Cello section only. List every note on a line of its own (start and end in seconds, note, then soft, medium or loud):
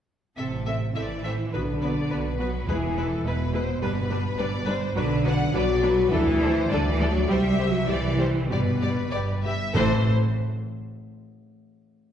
0.39 0.93 C3 medium
0.96 1.53 E3 medium
1.54 2.40 D3 medium
2.39 2.67 F#3 medium
2.68 3.25 E3 medium
3.25 4.63 B2 medium
4.95 5.49 D3 medium
5.52 6.10 F#3 loud
6.10 6.69 E3 medium
6.69 6.88 D3 medium
6.88 7.08 E3 medium
7.09 7.28 F#3 medium
7.28 7.68 G3 medium
7.68 7.88 F#3 medium
7.87 8.48 E3 medium
8.50 9.12 B2 medium
9.75 10.09 A3 medium